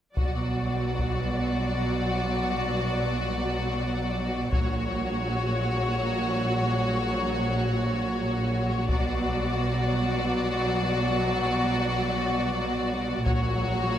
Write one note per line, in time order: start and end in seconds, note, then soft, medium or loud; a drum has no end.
0.17 4.49 B1 soft
0.17 4.50 B2 soft
0.17 4.50 F#3 soft
0.17 4.50 F#4 soft
0.17 4.50 D5 soft
0.17 taiko soft
0.99 taiko soft
4.52 8.90 A#1 soft
4.52 8.90 A#2 medium
4.52 8.86 F#3 soft
4.52 8.86 F#4 soft
4.52 8.85 C#5 medium
4.52 taiko soft
8.88 13.26 B1 soft
8.88 13.26 B2 medium
8.88 13.22 F#3 medium
8.88 13.23 F#4 medium
8.88 13.22 D5 medium
8.88 taiko soft
13.25 13.98 A#1 soft
13.25 13.98 A#2 medium
13.25 13.98 F#3 medium
13.25 13.98 F#4 medium
13.25 13.98 C#5 medium
13.25 taiko soft